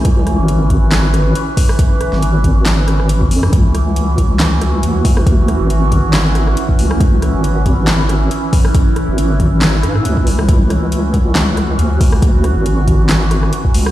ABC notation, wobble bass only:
X:1
M:4/4
L:1/16
Q:"Swing 16ths" 1/4=138
K:C#phr
V:1 name="Wobble bass" clef=bass
C,,3 G,,,8- G,,, z4 | z3 G,,,8- G,,,3 F,,2 | C,,12 D,,4- | D,,3 G,,,8- G,,, z2 C,,2- |
C,,3 G,,,8- G,,, z4 | z3 G,,,6- G,,, G,,2 C,,4 | C,,12 D,,4- | D,,3 G,,,8- G,,, z2 C,,2 |]